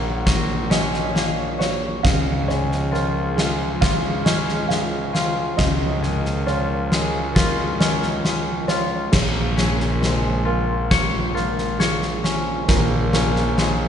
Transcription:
Already playing: fingered electric bass A#1, analog synth pad C#3 F#3 A#3 F#4 A#4, clean electric guitar A#3 C#4 F#4, felt piano C#5
0.26 clean electric guitar F#4, analog synth pad C#5, kick, snare
0.70 clean electric guitar C#4, felt piano D#5, snare
0.94 snare
1.15 clean electric guitar A#3, snare
1.59 clean electric guitar F#4, felt piano C#5, snare
2.02 fingered electric bass C#2, analog synth pad C#3 F3 G#3 F4 G#4, clean electric guitar C#3, felt piano F5, kick, snare
2.48 clean electric guitar G#3, felt piano C#5, snare
2.72 snare
2.92 clean electric guitar F4, felt piano A#4, snare
3.37 clean electric guitar G#3, felt piano G#4, snare
3.81 clean electric guitar F4, felt piano F5, kick, snare
4.25 clean electric guitar C#4, felt piano D#5, snare
4.49 snare
4.69 clean electric guitar G#3, felt piano F5, snare
5.13 clean electric guitar F4, snare
5.57 fingered electric bass C#2, clean electric guitar C#3, analog synth pad A#4, felt piano D#5, kick, snare
6.02 clean electric guitar G#3, snare
6.25 snare
6.47 clean electric guitar F4, felt piano C#5, snare
6.92 clean electric guitar G#3, snare
7.35 clean electric guitar F4, kick, snare
7.80 clean electric guitar C#4, felt piano D#5, snare
8.03 snare
8.24 clean electric guitar G#3, snare
8.68 clean electric guitar F4, felt piano C#5, snare
9.12 fingered electric bass A#1, clean electric guitar A#2, analog synth pad C#3 F3 G#3 A#3 F4, felt piano G#4, kick, snare, crash
9.57 clean electric guitar C#4, snare
9.80 snare
10.01 clean electric guitar G#3, felt piano C5, snare
10.46 clean electric guitar F4, felt piano A#4
10.91 clean electric guitar C#5, kick, snare
11.34 clean electric guitar F4, felt piano A#4, snare
11.58 snare
11.79 felt piano G#4, clean electric guitar C#5, snare
12.02 snare
12.24 clean electric guitar C#4, snare
12.68 fingered electric bass A#1, clean electric guitar A#2, felt piano A#4, kick, snare
13.13 clean electric guitar C#4, felt piano A#4, snare
13.36 snare
13.58 clean electric guitar G#3, snare

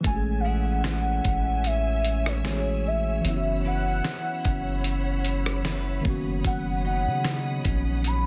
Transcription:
0.01 tine electric piano E3 G#3, clean electric guitar A3, string section C#5 E5 G#5 E6, kick, closed hi-hat
0.05 808-style bass A1, tine electric piano A3 C#4, soft synth lead G#5
0.10 tine electric piano F#4
0.16 tine electric piano G#4
0.40 soft synth lead F5
0.44 clean electric guitar C#4 E4 G#4, soft synth lead F#5
0.84 clean electric guitar E4, snare, closed hi-hat
1.24 808-style bass A1, clean electric guitar C#4, kick, closed hi-hat
1.64 soft synth lead E5, closed hi-hat
2.05 closed hi-hat
2.26 soft synth lead C#5, cross-stick
2.43 tine electric piano E3 G#3 A3 C#4, clean electric guitar C#4 E4 G#4, snare, closed hi-hat
2.47 tine electric piano F#4
2.54 tine electric piano G#4
2.87 soft synth lead E5
3.21 tine electric piano E3 F#3, clean electric guitar F#3
3.25 808-style bass F#1, tine electric piano B3 C#4, soft synth lead E5, string section F#5 B5, closed hi-hat
3.30 tine electric piano E4
3.36 tine electric piano F#4
3.65 clean electric guitar C#4 E4 B4, soft synth lead F#5
4.04 clean electric guitar E4, snare, closed hi-hat
4.45 808-style bass F#1, clean electric guitar C#4, kick, closed hi-hat
4.84 closed hi-hat
5.24 closed hi-hat
5.46 cross-stick
5.65 clean electric guitar C#4 E4 B4, snare, closed hi-hat
6.01 tine electric piano D#3 A#3, clean electric guitar F#3
6.05 808-style bass F#1, tine electric piano B3 C#4, string section F#5 D#6, kick
6.10 tine electric piano F#4
6.45 808-style bass F#1, clean electric guitar F#3, soft synth lead F#5, kick, closed hi-hat
6.85 clean electric guitar C#4 D#4, soft synth lead F#5
7.06 808-style bass C#3
7.25 clean electric guitar D#4, snare, closed hi-hat
7.64 808-style bass A#1, clean electric guitar C#4, kick, closed hi-hat
8.04 soft synth lead B5, closed hi-hat

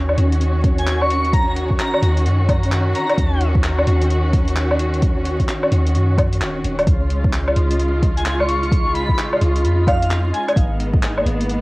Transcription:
Already playing: 808-style bass D#2, string section D#3 C#4 F#4, synth texture C#4 C#5
0.09 low woodblock
0.18 808-style bass D#2, open hi-hat
0.32 closed hi-hat
0.41 closed hi-hat
0.64 kick, open hi-hat
0.78 digital synth lead G#5, closed hi-hat
0.87 clap, closed hi-hat
1.01 digital synth lead C#6, low woodblock
1.10 open hi-hat
1.25 closed hi-hat
1.33 digital synth lead A#5, kick, closed hi-hat
1.48 digital synth lead A#5
1.56 open hi-hat
1.71 kick
1.80 digital synth lead A#5, clap, closed hi-hat
1.94 low woodblock
2.02 808-style bass D#2, open hi-hat
2.17 closed hi-hat
2.25 808-style bass F#2, closed hi-hat
2.49 kick, open hi-hat, low woodblock
2.63 closed hi-hat
2.72 clap, closed hi-hat
2.95 digital synth lead A#5, open hi-hat
3.09 closed hi-hat, low woodblock
3.18 808-style bass D#2, kick, closed hi-hat
3.41 open hi-hat
3.55 kick
3.64 clap, closed hi-hat
3.79 low woodblock
3.87 808-style bass D#2, open hi-hat
4.01 closed hi-hat
4.10 closed hi-hat
4.33 kick, open hi-hat
4.48 closed hi-hat
4.56 clap, closed hi-hat
4.71 low woodblock
4.79 open hi-hat
4.94 closed hi-hat
5.02 kick, closed hi-hat
5.25 open hi-hat
5.40 kick, closed hi-hat
5.49 clap, closed hi-hat
5.63 low woodblock
5.72 808-style bass D#2, open hi-hat
5.87 closed hi-hat
5.95 808-style bass F#2, closed hi-hat
6.18 kick, open hi-hat, low woodblock
6.33 closed hi-hat
6.41 808-style bass D#1, clap, closed hi-hat
6.64 808-style bass D#1, open hi-hat
6.79 closed hi-hat, low woodblock
6.87 808-style bass C#2, string section C#3 G#3 F4, synth texture D#4 D#5, kick, closed hi-hat
7.10 open hi-hat
7.24 kick
7.33 clap, closed hi-hat
7.48 low woodblock
7.56 808-style bass C#2, open hi-hat
7.71 closed hi-hat
7.79 closed hi-hat
8.02 kick, open hi-hat
8.17 digital synth lead G#5, closed hi-hat
8.26 clap, closed hi-hat
8.40 digital synth lead C#6, low woodblock
8.49 open hi-hat
8.63 closed hi-hat
8.72 kick, closed hi-hat
8.94 digital synth lead B5, open hi-hat
9.09 kick
9.19 clap, closed hi-hat
9.33 low woodblock
9.41 808-style bass C#2, open hi-hat
9.56 closed hi-hat
9.64 808-style bass F2, closed hi-hat
9.87 digital synth lead F5, kick, open hi-hat, low woodblock
10.02 closed hi-hat
10.11 clap, closed hi-hat
10.33 digital synth lead G#5, open hi-hat
10.48 digital synth lead G#5, closed hi-hat, low woodblock
10.56 808-style bass G#1, string section G#3 A#3 B3, kick, closed hi-hat
10.80 open hi-hat
10.94 kick
11.03 clap, closed hi-hat
11.18 low woodblock
11.25 808-style bass G#1, open hi-hat
11.41 closed hi-hat
11.49 closed hi-hat

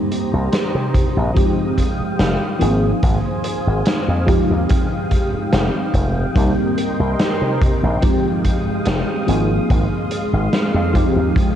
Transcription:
Already playing: fm electric piano G3 A#3 C4 D#4 G4, string machine G4 C5 A#5 D#6
0.12 closed hi-hat
0.33 slap bass C2
0.53 snare, closed hi-hat
0.75 slap bass C3
0.94 kick, closed hi-hat
1.17 slap bass A#1
1.34 fm electric piano F3 G#3 C4 D#4 G4, string machine G#3 F5 G5, kick, closed hi-hat
1.78 kick, closed hi-hat
2.00 muted slap bass stroke
2.19 slap bass F1, snare, closed hi-hat
2.59 slap bass G#1, fm electric piano F3 A#3 C4 D#4 G#4, string machine C5 F5 G#5, closed hi-hat
3.03 slap bass G#1, kick, closed hi-hat
3.44 closed hi-hat
3.67 slap bass G#1
3.85 snare, closed hi-hat
4.08 slap bass F2
4.26 fm electric piano F3 G#3 C4 D#4 G4, string machine G#3 G5, kick, closed hi-hat
4.50 slap bass D#2
4.69 kick, closed hi-hat
5.11 kick, closed hi-hat
5.33 muted slap bass stroke
5.53 slap bass F1, snare, closed hi-hat
5.94 slap bass F1, kick, closed hi-hat
6.34 slap bass C2, fm electric piano G3 A#3 C4 D#4 G4, string machine A#4 D#5 C6, kick, closed hi-hat
6.78 closed hi-hat
6.99 slap bass C2
7.19 snare, closed hi-hat
7.42 slap bass C3
7.62 kick, closed hi-hat
7.83 slap bass A#1
8.01 fm electric piano F3 G#3 C4 D#4 G4, string machine G#3 F5 D#6, kick, closed hi-hat
8.45 kick, closed hi-hat
8.66 muted slap bass stroke
8.85 slap bass F1, snare, closed hi-hat
9.26 slap bass G#1, fm electric piano F3 A#3 C4 D#4 G#4, string machine G#3 F5 C6, closed hi-hat
9.70 slap bass G#1, kick, closed hi-hat
10.11 closed hi-hat
10.33 slap bass G#1
10.53 snare, closed hi-hat
10.74 slap bass F2
10.93 fm electric piano F3 G#3 C4 D#4 G4, string machine G5 D#6, kick, closed hi-hat
11.16 slap bass D#2
11.36 kick, closed hi-hat

